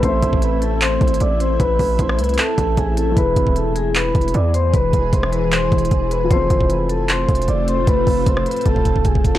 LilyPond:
<<
  \new Staff \with { instrumentName = "Vibraphone" } { \time 4/4 \key a \minor \tempo 4 = 153 <c'' c'''>4 <b' b''>8 <a' a''>8 <c'' c'''>4 <d'' d'''>8 <c'' c'''>8 | <b' b''>4 <c'' c'''>8 <b' b''>8 <a' a''>4 <gis' gis''>8 <a' a''>8 | <b' b''>4 <a' a''>8 <gis' gis''>8 <b' b''>4 <d'' d'''>8 <c'' c'''>8 | <b' b''>4 <c'' c'''>8 <b' b''>8 <c'' c'''>4. <b' b''>8 |
<c'' c'''>4 <b' b''>8 <a' a''>8 <c'' c'''>4 <d'' d'''>8 <c'' c'''>8 | <b' b''>4 <c'' c'''>8 <b' b''>8 <a' a''>4 <gis' gis''>8 <a' a''>8 | }
  \new Staff \with { instrumentName = "Grand piano" } { \time 4/4 \key a \minor <a c' a' e''>1~ | <a c' a' e''>1 | <e e' gis'>1~ | <e e' gis'>1 |
<f c' f' a'>1~ | <f c' f' a'>1 | }
  \new Staff \with { instrumentName = "Ambient pad" } { \time 4/4 \key a \minor << { e'1~ | e'1~ | e'1~ | e'1 |
f'1~ | f'1 | } \\ { <a c'>1~ | <a c'>1 | <e gis'>1~ | <e gis'>1 |
<a c'>1~ | <a c'>1 | } >> }
  \new Staff \with { instrumentName = "808-style bass" } { \clef bass \time 4/4 \key a \minor a,,8 a,,2 gis,,8 a,,4 | a,,8 a,,8 a,,8 c,8 r8 a,,8 a,,4 | e,,8 e,,2 e,,8 e,4 | e,,8 e,,8 e,,4. e,,8 e,,4 |
f,,8 f,,2 e,,8 f,,4 | f,,8 f,,8 f,,8 r8 f,,2 | }
  \new DrumStaff \with { instrumentName = "Drums" } \drummode { \time 4/4 <hh bd>8 <hh bd>16 bd16 hh8 hh8 \tuplet 3/2 { <hc hh>16 r16 r16 <hh bd>16 hh16 hh16 } hh8 hh8 | <hh bd>8 <hho bd>8 <hh bd>16 ss16 hh32 hh32 hh32 hh32 <hc hh>8 <hh bd>8 <hh bd>8 hh8 | <hh bd>8 <hh bd>16 bd16 hh8 hh8 \tuplet 3/2 { <hc hh>16 r16 r16 <hh bd>16 hh16 hh16 } hh8 hh8 | <hh bd>8 <hh bd>8 <hh bd>16 ss16 hh8 \tuplet 3/2 { <hc hh>16 r16 r16 <hh bd>16 hh16 hh16 } <hh bd>8 hh8 |
<hh bd>8 <hh bd>16 bd16 hh8 hh8 \tuplet 3/2 { <hc hh>16 r16 r16 <hh bd>16 hh16 hh16 } hh8 hh8 | <hh bd>8 <hho bd>8 <hh bd>16 ss16 hh32 hh32 hh32 hh32 <hh bd>16 bd16 <hh bd>16 bd16 <hh bd>16 bd16 <hh bd>16 sn16 | }
>>